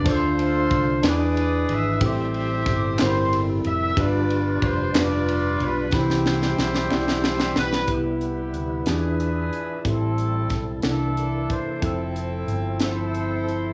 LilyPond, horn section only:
\new Staff \with { instrumentName = "Horn section" } { \time 6/8 \key c \major \tempo 4. = 61 << { c''4. d''4 e''8 | e''4. c''8 r8 e''8 | d''4 c''8 d''4 b'8 | c''2~ c''8 b'8 |
g'4. b'4. | a'4. a'4 c''8 | a'4 r8 c''4. | } \\ { <f' a'>4. <gis' b'>4. | <g' c''>4. r4. | <f' b'>4. <f' b'>4. | <e' g'>2~ <e' g'>8 r8 |
<b e'>4. <d' gis'>4. | <c' e'>4. <d' e'>4. | <c' e'>4. <e' a'>4. | } >> }